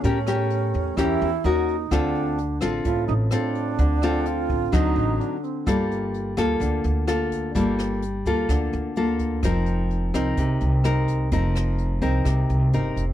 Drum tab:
HH |xxxxxxxx|xxxxxxxx|xxxxxxxx|xxxxxxxx|
SD |-r--r---|r--r--r-|-r--r---|r--r--r-|
BD |o---o---|o---o---|o--oo---|o--oo--o|

HH |xxxxxxxx|xxxxxxxx|xxxxxxxx|
SD |-r--r---|r--r--r-|-r--r---|
BD |o--oo--o|o--oo--o|o--oo--o|